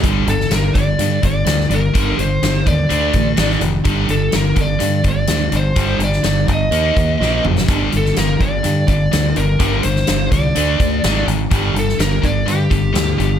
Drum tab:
HH |x-x-x-x-x-x-x-x-|x-x-x-x-x-x-x-x-|x-x-x-x-x-x-x-x-|x-x-x-x-x-x-----|
SD |---oo-------oo--|----o-------oo--|----o-------o---|---oo-------o--o|
T2 |----------------|----------------|----------------|--------------o-|
BD |o-----o---o-----|o-----o---o-----|o-----o---o-----|o-----o---o-----|

HH |x-x-x-x-x-x-x-x-|x-x-x-x-x-x-x-x-|x-x-x-x-x-x-x-x-|
SD |---oo-------o---|---oo-------o---|---oo-------o---|
T2 |----------------|----------------|----------------|
BD |o-----o---o-----|o-----o---o-----|o-----o---o-----|